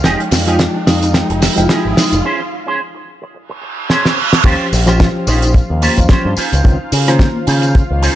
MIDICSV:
0, 0, Header, 1, 11, 480
1, 0, Start_track
1, 0, Tempo, 550459
1, 40, Time_signature, 4, 2, 24, 8
1, 7109, End_track
2, 0, Start_track
2, 0, Title_t, "Analog synth pad"
2, 0, Program_c, 0, 89
2, 0, Note_on_c, 0, 65, 78
2, 0, Note_on_c, 0, 77, 80
2, 1959, Note_off_c, 0, 65, 0
2, 1959, Note_off_c, 0, 77, 0
2, 3877, Note_on_c, 0, 65, 83
2, 3879, Note_on_c, 0, 77, 81
2, 7109, Note_off_c, 0, 65, 0
2, 7109, Note_off_c, 0, 77, 0
2, 7109, End_track
3, 0, Start_track
3, 0, Title_t, "Clean electric guitar"
3, 0, Program_c, 1, 27
3, 30, Note_on_c, 1, 63, 112
3, 37, Note_on_c, 1, 67, 99
3, 47, Note_on_c, 1, 68, 125
3, 169, Note_off_c, 1, 63, 0
3, 172, Note_off_c, 1, 67, 0
3, 178, Note_off_c, 1, 68, 0
3, 405, Note_on_c, 1, 63, 87
3, 412, Note_on_c, 1, 67, 83
3, 419, Note_on_c, 1, 68, 95
3, 515, Note_off_c, 1, 63, 0
3, 519, Note_off_c, 1, 67, 0
3, 523, Note_off_c, 1, 68, 0
3, 1472, Note_on_c, 1, 63, 89
3, 1478, Note_on_c, 1, 67, 79
3, 1487, Note_on_c, 1, 68, 102
3, 1716, Note_off_c, 1, 63, 0
3, 1719, Note_off_c, 1, 67, 0
3, 1724, Note_off_c, 1, 68, 0
3, 1956, Note_on_c, 1, 61, 116
3, 1963, Note_on_c, 1, 68, 104
3, 1970, Note_on_c, 1, 72, 126
3, 2092, Note_off_c, 1, 61, 0
3, 2096, Note_off_c, 1, 68, 0
3, 2099, Note_off_c, 1, 72, 0
3, 2323, Note_on_c, 1, 61, 91
3, 2332, Note_on_c, 1, 68, 84
3, 2338, Note_on_c, 1, 72, 100
3, 2435, Note_off_c, 1, 61, 0
3, 2439, Note_off_c, 1, 68, 0
3, 2442, Note_off_c, 1, 72, 0
3, 3394, Note_on_c, 1, 61, 93
3, 3401, Note_on_c, 1, 68, 82
3, 3408, Note_on_c, 1, 72, 102
3, 3637, Note_off_c, 1, 61, 0
3, 3640, Note_off_c, 1, 68, 0
3, 3644, Note_off_c, 1, 72, 0
3, 3874, Note_on_c, 1, 61, 115
3, 3879, Note_on_c, 1, 65, 103
3, 3884, Note_on_c, 1, 67, 103
3, 3889, Note_on_c, 1, 72, 127
3, 4064, Note_off_c, 1, 61, 0
3, 4067, Note_off_c, 1, 65, 0
3, 4069, Note_off_c, 1, 67, 0
3, 4071, Note_off_c, 1, 72, 0
3, 4246, Note_on_c, 1, 61, 93
3, 4251, Note_on_c, 1, 65, 81
3, 4256, Note_on_c, 1, 67, 83
3, 4260, Note_on_c, 1, 72, 102
3, 4423, Note_off_c, 1, 61, 0
3, 4426, Note_off_c, 1, 65, 0
3, 4428, Note_off_c, 1, 67, 0
3, 4430, Note_off_c, 1, 72, 0
3, 4592, Note_on_c, 1, 61, 91
3, 4599, Note_on_c, 1, 65, 82
3, 4604, Note_on_c, 1, 67, 82
3, 4608, Note_on_c, 1, 72, 101
3, 4836, Note_off_c, 1, 61, 0
3, 4840, Note_off_c, 1, 65, 0
3, 4842, Note_off_c, 1, 67, 0
3, 4844, Note_off_c, 1, 72, 0
3, 5072, Note_on_c, 1, 61, 114
3, 5077, Note_on_c, 1, 65, 105
3, 5083, Note_on_c, 1, 67, 101
3, 5088, Note_on_c, 1, 72, 123
3, 5210, Note_off_c, 1, 61, 0
3, 5213, Note_off_c, 1, 65, 0
3, 5215, Note_off_c, 1, 67, 0
3, 5218, Note_off_c, 1, 72, 0
3, 5316, Note_on_c, 1, 61, 86
3, 5319, Note_on_c, 1, 65, 84
3, 5326, Note_on_c, 1, 67, 84
3, 5331, Note_on_c, 1, 72, 98
3, 5505, Note_off_c, 1, 61, 0
3, 5507, Note_off_c, 1, 65, 0
3, 5510, Note_off_c, 1, 67, 0
3, 5512, Note_off_c, 1, 72, 0
3, 5556, Note_on_c, 1, 61, 95
3, 5561, Note_on_c, 1, 63, 89
3, 5566, Note_on_c, 1, 65, 88
3, 5570, Note_on_c, 1, 72, 109
3, 6038, Note_off_c, 1, 61, 0
3, 6040, Note_off_c, 1, 63, 0
3, 6043, Note_off_c, 1, 65, 0
3, 6045, Note_off_c, 1, 72, 0
3, 6169, Note_on_c, 1, 61, 95
3, 6175, Note_on_c, 1, 63, 86
3, 6179, Note_on_c, 1, 65, 83
3, 6186, Note_on_c, 1, 72, 106
3, 6344, Note_off_c, 1, 61, 0
3, 6348, Note_off_c, 1, 63, 0
3, 6350, Note_off_c, 1, 65, 0
3, 6353, Note_off_c, 1, 72, 0
3, 6513, Note_on_c, 1, 61, 89
3, 6518, Note_on_c, 1, 63, 85
3, 6526, Note_on_c, 1, 65, 69
3, 6528, Note_on_c, 1, 72, 96
3, 6757, Note_off_c, 1, 61, 0
3, 6760, Note_off_c, 1, 63, 0
3, 6761, Note_off_c, 1, 65, 0
3, 6764, Note_off_c, 1, 72, 0
3, 6993, Note_on_c, 1, 61, 117
3, 6998, Note_on_c, 1, 63, 106
3, 7003, Note_on_c, 1, 65, 106
3, 7008, Note_on_c, 1, 72, 121
3, 7109, Note_off_c, 1, 61, 0
3, 7109, Note_off_c, 1, 63, 0
3, 7109, Note_off_c, 1, 65, 0
3, 7109, Note_off_c, 1, 72, 0
3, 7109, End_track
4, 0, Start_track
4, 0, Title_t, "Vibraphone"
4, 0, Program_c, 2, 11
4, 409, Note_on_c, 2, 65, 78
4, 561, Note_off_c, 2, 65, 0
4, 756, Note_on_c, 2, 63, 83
4, 926, Note_off_c, 2, 63, 0
4, 1376, Note_on_c, 2, 65, 85
4, 1525, Note_off_c, 2, 65, 0
4, 1721, Note_on_c, 2, 63, 90
4, 1889, Note_off_c, 2, 63, 0
4, 4255, Note_on_c, 2, 65, 87
4, 4404, Note_off_c, 2, 65, 0
4, 4599, Note_on_c, 2, 63, 91
4, 4768, Note_off_c, 2, 63, 0
4, 5081, Note_on_c, 2, 58, 91
4, 5249, Note_off_c, 2, 58, 0
4, 6174, Note_on_c, 2, 58, 84
4, 6242, Note_off_c, 2, 58, 0
4, 6278, Note_on_c, 2, 58, 72
4, 6365, Note_off_c, 2, 58, 0
4, 7109, End_track
5, 0, Start_track
5, 0, Title_t, "Reed electric piano"
5, 0, Program_c, 3, 4
5, 35, Note_on_c, 3, 53, 67
5, 37, Note_on_c, 3, 56, 62
5, 40, Note_on_c, 3, 63, 64
5, 44, Note_on_c, 3, 79, 79
5, 380, Note_off_c, 3, 53, 0
5, 380, Note_off_c, 3, 56, 0
5, 382, Note_off_c, 3, 63, 0
5, 384, Note_off_c, 3, 79, 0
5, 407, Note_on_c, 3, 53, 83
5, 411, Note_on_c, 3, 56, 75
5, 419, Note_on_c, 3, 63, 74
5, 421, Note_on_c, 3, 79, 88
5, 980, Note_off_c, 3, 53, 0
5, 982, Note_off_c, 3, 56, 0
5, 986, Note_off_c, 3, 63, 0
5, 987, Note_off_c, 3, 79, 0
5, 992, Note_on_c, 3, 53, 68
5, 997, Note_on_c, 3, 56, 64
5, 999, Note_on_c, 3, 63, 65
5, 1003, Note_on_c, 3, 79, 76
5, 1338, Note_off_c, 3, 53, 0
5, 1341, Note_off_c, 3, 56, 0
5, 1341, Note_off_c, 3, 63, 0
5, 1343, Note_off_c, 3, 79, 0
5, 1360, Note_on_c, 3, 53, 84
5, 1365, Note_on_c, 3, 56, 74
5, 1371, Note_on_c, 3, 63, 74
5, 1376, Note_on_c, 3, 79, 87
5, 1936, Note_off_c, 3, 53, 0
5, 1939, Note_off_c, 3, 56, 0
5, 1942, Note_off_c, 3, 63, 0
5, 1944, Note_off_c, 3, 79, 0
5, 3872, Note_on_c, 3, 53, 75
5, 3874, Note_on_c, 3, 72, 69
5, 3876, Note_on_c, 3, 61, 71
5, 3880, Note_on_c, 3, 67, 86
5, 4218, Note_off_c, 3, 53, 0
5, 4219, Note_off_c, 3, 72, 0
5, 4220, Note_off_c, 3, 61, 0
5, 4222, Note_off_c, 3, 67, 0
5, 4244, Note_on_c, 3, 53, 91
5, 4249, Note_on_c, 3, 72, 84
5, 4253, Note_on_c, 3, 61, 81
5, 4260, Note_on_c, 3, 67, 100
5, 5177, Note_off_c, 3, 53, 0
5, 5179, Note_off_c, 3, 72, 0
5, 5181, Note_off_c, 3, 61, 0
5, 5185, Note_off_c, 3, 67, 0
5, 5208, Note_on_c, 3, 53, 78
5, 5211, Note_on_c, 3, 61, 73
5, 5214, Note_on_c, 3, 72, 85
5, 5544, Note_off_c, 3, 53, 0
5, 5546, Note_off_c, 3, 61, 0
5, 5548, Note_off_c, 3, 72, 0
5, 5790, Note_on_c, 3, 51, 99
5, 5793, Note_on_c, 3, 60, 93
5, 5795, Note_on_c, 3, 61, 92
5, 5799, Note_on_c, 3, 65, 109
5, 5896, Note_off_c, 3, 51, 0
5, 5897, Note_off_c, 3, 60, 0
5, 5898, Note_off_c, 3, 61, 0
5, 5900, Note_off_c, 3, 65, 0
5, 6165, Note_on_c, 3, 51, 78
5, 6170, Note_on_c, 3, 72, 69
5, 6175, Note_on_c, 3, 61, 69
5, 6182, Note_on_c, 3, 65, 82
5, 7109, Note_off_c, 3, 51, 0
5, 7109, Note_off_c, 3, 61, 0
5, 7109, Note_off_c, 3, 65, 0
5, 7109, Note_off_c, 3, 72, 0
5, 7109, End_track
6, 0, Start_track
6, 0, Title_t, "Picked electric bass"
6, 0, Program_c, 4, 34
6, 38, Note_on_c, 4, 29, 90
6, 125, Note_off_c, 4, 29, 0
6, 279, Note_on_c, 4, 41, 91
6, 576, Note_off_c, 4, 41, 0
6, 759, Note_on_c, 4, 41, 93
6, 1056, Note_off_c, 4, 41, 0
6, 1133, Note_on_c, 4, 29, 90
6, 1277, Note_off_c, 4, 29, 0
6, 1376, Note_on_c, 4, 29, 94
6, 1443, Note_off_c, 4, 29, 0
6, 1615, Note_on_c, 4, 32, 88
6, 1682, Note_off_c, 4, 32, 0
6, 1853, Note_on_c, 4, 29, 95
6, 1921, Note_off_c, 4, 29, 0
6, 3873, Note_on_c, 4, 39, 92
6, 3962, Note_off_c, 4, 39, 0
6, 4121, Note_on_c, 4, 34, 93
6, 4417, Note_off_c, 4, 34, 0
6, 4599, Note_on_c, 4, 34, 99
6, 4896, Note_off_c, 4, 34, 0
6, 4972, Note_on_c, 4, 39, 92
6, 5116, Note_off_c, 4, 39, 0
6, 5214, Note_on_c, 4, 39, 92
6, 5282, Note_off_c, 4, 39, 0
6, 5451, Note_on_c, 4, 43, 85
6, 5520, Note_off_c, 4, 43, 0
6, 5692, Note_on_c, 4, 37, 95
6, 5761, Note_off_c, 4, 37, 0
6, 5798, Note_on_c, 4, 37, 96
6, 5884, Note_off_c, 4, 37, 0
6, 6037, Note_on_c, 4, 49, 97
6, 6335, Note_off_c, 4, 49, 0
6, 6518, Note_on_c, 4, 49, 102
6, 6816, Note_off_c, 4, 49, 0
6, 6894, Note_on_c, 4, 37, 92
6, 7037, Note_off_c, 4, 37, 0
6, 7109, End_track
7, 0, Start_track
7, 0, Title_t, "Reverse cymbal"
7, 0, Program_c, 5, 119
7, 2919, Note_on_c, 5, 60, 75
7, 3879, Note_off_c, 5, 60, 0
7, 7109, End_track
8, 0, Start_track
8, 0, Title_t, "Riser"
8, 0, Program_c, 6, 103
8, 0, Note_on_c, 6, 60, 76
8, 1959, Note_off_c, 6, 60, 0
8, 7109, End_track
9, 0, Start_track
9, 0, Title_t, "Muted clean electric guitar strokes"
9, 272, Note_on_c, 9, 29, 32
9, 359, Note_off_c, 9, 29, 0
9, 648, Note_on_c, 9, 29, 35
9, 735, Note_off_c, 9, 29, 0
9, 888, Note_on_c, 9, 29, 91
9, 975, Note_off_c, 9, 29, 0
9, 991, Note_on_c, 9, 29, 33
9, 1079, Note_off_c, 9, 29, 0
9, 1127, Note_on_c, 9, 29, 117
9, 1214, Note_off_c, 9, 29, 0
9, 1230, Note_on_c, 9, 29, 32
9, 1317, Note_off_c, 9, 29, 0
9, 2195, Note_on_c, 9, 29, 32
9, 2282, Note_off_c, 9, 29, 0
9, 2568, Note_on_c, 9, 29, 35
9, 2655, Note_off_c, 9, 29, 0
9, 2805, Note_on_c, 9, 29, 91
9, 2892, Note_off_c, 9, 29, 0
9, 2916, Note_on_c, 9, 29, 34
9, 3003, Note_off_c, 9, 29, 0
9, 3047, Note_on_c, 9, 29, 120
9, 3134, Note_off_c, 9, 29, 0
9, 3152, Note_on_c, 9, 29, 34
9, 3239, Note_off_c, 9, 29, 0
9, 7109, End_track
10, 0, Start_track
10, 0, Title_t, "Muted picked electric bass strokes"
10, 5558, Note_on_c, 9, 29, 41
10, 5645, Note_off_c, 9, 29, 0
10, 7109, End_track
11, 0, Start_track
11, 0, Title_t, "Drums"
11, 35, Note_on_c, 9, 38, 70
11, 37, Note_on_c, 9, 36, 105
11, 43, Note_on_c, 9, 42, 74
11, 46, Note_on_c, 9, 54, 29
11, 122, Note_off_c, 9, 38, 0
11, 124, Note_off_c, 9, 36, 0
11, 130, Note_off_c, 9, 42, 0
11, 133, Note_off_c, 9, 54, 0
11, 176, Note_on_c, 9, 42, 46
11, 263, Note_off_c, 9, 42, 0
11, 273, Note_on_c, 9, 46, 111
11, 277, Note_on_c, 9, 54, 79
11, 283, Note_on_c, 9, 38, 72
11, 360, Note_off_c, 9, 46, 0
11, 364, Note_off_c, 9, 54, 0
11, 370, Note_off_c, 9, 38, 0
11, 414, Note_on_c, 9, 42, 64
11, 416, Note_on_c, 9, 54, 44
11, 501, Note_off_c, 9, 42, 0
11, 503, Note_off_c, 9, 54, 0
11, 514, Note_on_c, 9, 42, 75
11, 516, Note_on_c, 9, 54, 29
11, 519, Note_on_c, 9, 36, 110
11, 519, Note_on_c, 9, 38, 74
11, 601, Note_off_c, 9, 42, 0
11, 603, Note_off_c, 9, 54, 0
11, 606, Note_off_c, 9, 36, 0
11, 606, Note_off_c, 9, 38, 0
11, 760, Note_on_c, 9, 38, 76
11, 760, Note_on_c, 9, 46, 90
11, 761, Note_on_c, 9, 54, 67
11, 847, Note_off_c, 9, 46, 0
11, 848, Note_off_c, 9, 38, 0
11, 848, Note_off_c, 9, 54, 0
11, 893, Note_on_c, 9, 54, 40
11, 894, Note_on_c, 9, 42, 68
11, 980, Note_off_c, 9, 54, 0
11, 981, Note_off_c, 9, 42, 0
11, 996, Note_on_c, 9, 38, 84
11, 999, Note_on_c, 9, 36, 120
11, 999, Note_on_c, 9, 42, 80
11, 1001, Note_on_c, 9, 54, 32
11, 1084, Note_off_c, 9, 38, 0
11, 1086, Note_off_c, 9, 36, 0
11, 1086, Note_off_c, 9, 42, 0
11, 1089, Note_off_c, 9, 54, 0
11, 1133, Note_on_c, 9, 42, 56
11, 1220, Note_off_c, 9, 42, 0
11, 1237, Note_on_c, 9, 46, 119
11, 1239, Note_on_c, 9, 54, 73
11, 1243, Note_on_c, 9, 38, 83
11, 1324, Note_off_c, 9, 46, 0
11, 1326, Note_off_c, 9, 54, 0
11, 1330, Note_off_c, 9, 38, 0
11, 1372, Note_on_c, 9, 42, 68
11, 1375, Note_on_c, 9, 54, 41
11, 1460, Note_off_c, 9, 42, 0
11, 1463, Note_off_c, 9, 54, 0
11, 1475, Note_on_c, 9, 36, 107
11, 1476, Note_on_c, 9, 38, 73
11, 1481, Note_on_c, 9, 42, 66
11, 1488, Note_on_c, 9, 54, 30
11, 1562, Note_off_c, 9, 36, 0
11, 1564, Note_off_c, 9, 38, 0
11, 1568, Note_off_c, 9, 42, 0
11, 1576, Note_off_c, 9, 54, 0
11, 1720, Note_on_c, 9, 38, 84
11, 1723, Note_on_c, 9, 46, 100
11, 1725, Note_on_c, 9, 54, 82
11, 1807, Note_off_c, 9, 38, 0
11, 1810, Note_off_c, 9, 46, 0
11, 1812, Note_off_c, 9, 54, 0
11, 1854, Note_on_c, 9, 42, 62
11, 1858, Note_on_c, 9, 54, 42
11, 1942, Note_off_c, 9, 42, 0
11, 1946, Note_off_c, 9, 54, 0
11, 3399, Note_on_c, 9, 38, 60
11, 3487, Note_off_c, 9, 38, 0
11, 3536, Note_on_c, 9, 38, 66
11, 3623, Note_off_c, 9, 38, 0
11, 3773, Note_on_c, 9, 38, 90
11, 3861, Note_off_c, 9, 38, 0
11, 3872, Note_on_c, 9, 36, 110
11, 3876, Note_on_c, 9, 54, 30
11, 3883, Note_on_c, 9, 49, 104
11, 3884, Note_on_c, 9, 42, 59
11, 3959, Note_off_c, 9, 36, 0
11, 3963, Note_off_c, 9, 54, 0
11, 3970, Note_off_c, 9, 49, 0
11, 3971, Note_off_c, 9, 42, 0
11, 4121, Note_on_c, 9, 46, 112
11, 4122, Note_on_c, 9, 54, 72
11, 4208, Note_off_c, 9, 46, 0
11, 4209, Note_off_c, 9, 54, 0
11, 4246, Note_on_c, 9, 42, 76
11, 4253, Note_on_c, 9, 37, 73
11, 4254, Note_on_c, 9, 54, 47
11, 4333, Note_off_c, 9, 42, 0
11, 4340, Note_off_c, 9, 37, 0
11, 4341, Note_off_c, 9, 54, 0
11, 4358, Note_on_c, 9, 42, 72
11, 4360, Note_on_c, 9, 38, 116
11, 4361, Note_on_c, 9, 36, 126
11, 4362, Note_on_c, 9, 54, 32
11, 4445, Note_off_c, 9, 42, 0
11, 4447, Note_off_c, 9, 38, 0
11, 4448, Note_off_c, 9, 36, 0
11, 4449, Note_off_c, 9, 54, 0
11, 4595, Note_on_c, 9, 54, 76
11, 4598, Note_on_c, 9, 46, 91
11, 4682, Note_off_c, 9, 54, 0
11, 4686, Note_off_c, 9, 46, 0
11, 4727, Note_on_c, 9, 42, 69
11, 4733, Note_on_c, 9, 54, 42
11, 4815, Note_off_c, 9, 42, 0
11, 4820, Note_off_c, 9, 54, 0
11, 4835, Note_on_c, 9, 36, 117
11, 4837, Note_on_c, 9, 42, 64
11, 4922, Note_off_c, 9, 36, 0
11, 4924, Note_off_c, 9, 42, 0
11, 5075, Note_on_c, 9, 46, 100
11, 5081, Note_on_c, 9, 54, 71
11, 5162, Note_off_c, 9, 46, 0
11, 5168, Note_off_c, 9, 54, 0
11, 5209, Note_on_c, 9, 54, 48
11, 5212, Note_on_c, 9, 36, 56
11, 5214, Note_on_c, 9, 42, 89
11, 5296, Note_off_c, 9, 54, 0
11, 5299, Note_off_c, 9, 36, 0
11, 5301, Note_off_c, 9, 42, 0
11, 5310, Note_on_c, 9, 38, 123
11, 5315, Note_on_c, 9, 36, 111
11, 5316, Note_on_c, 9, 42, 70
11, 5317, Note_on_c, 9, 54, 35
11, 5397, Note_off_c, 9, 38, 0
11, 5402, Note_off_c, 9, 36, 0
11, 5403, Note_off_c, 9, 42, 0
11, 5404, Note_off_c, 9, 54, 0
11, 5550, Note_on_c, 9, 54, 82
11, 5557, Note_on_c, 9, 46, 100
11, 5637, Note_off_c, 9, 54, 0
11, 5644, Note_off_c, 9, 46, 0
11, 5692, Note_on_c, 9, 42, 77
11, 5695, Note_on_c, 9, 54, 42
11, 5780, Note_off_c, 9, 42, 0
11, 5782, Note_off_c, 9, 54, 0
11, 5797, Note_on_c, 9, 36, 122
11, 5800, Note_on_c, 9, 42, 62
11, 5885, Note_off_c, 9, 36, 0
11, 5887, Note_off_c, 9, 42, 0
11, 6035, Note_on_c, 9, 46, 115
11, 6035, Note_on_c, 9, 54, 81
11, 6122, Note_off_c, 9, 46, 0
11, 6122, Note_off_c, 9, 54, 0
11, 6169, Note_on_c, 9, 54, 39
11, 6176, Note_on_c, 9, 37, 75
11, 6176, Note_on_c, 9, 42, 72
11, 6256, Note_off_c, 9, 54, 0
11, 6263, Note_off_c, 9, 37, 0
11, 6264, Note_off_c, 9, 42, 0
11, 6272, Note_on_c, 9, 36, 123
11, 6275, Note_on_c, 9, 42, 60
11, 6276, Note_on_c, 9, 38, 112
11, 6276, Note_on_c, 9, 54, 32
11, 6360, Note_off_c, 9, 36, 0
11, 6362, Note_off_c, 9, 42, 0
11, 6363, Note_off_c, 9, 38, 0
11, 6364, Note_off_c, 9, 54, 0
11, 6513, Note_on_c, 9, 46, 96
11, 6519, Note_on_c, 9, 54, 76
11, 6601, Note_off_c, 9, 46, 0
11, 6607, Note_off_c, 9, 54, 0
11, 6645, Note_on_c, 9, 42, 79
11, 6653, Note_on_c, 9, 54, 39
11, 6732, Note_off_c, 9, 42, 0
11, 6740, Note_off_c, 9, 54, 0
11, 6757, Note_on_c, 9, 42, 68
11, 6759, Note_on_c, 9, 36, 119
11, 6765, Note_on_c, 9, 54, 34
11, 6844, Note_off_c, 9, 42, 0
11, 6846, Note_off_c, 9, 36, 0
11, 6852, Note_off_c, 9, 54, 0
11, 6997, Note_on_c, 9, 46, 105
11, 7006, Note_on_c, 9, 54, 73
11, 7084, Note_off_c, 9, 46, 0
11, 7094, Note_off_c, 9, 54, 0
11, 7109, End_track
0, 0, End_of_file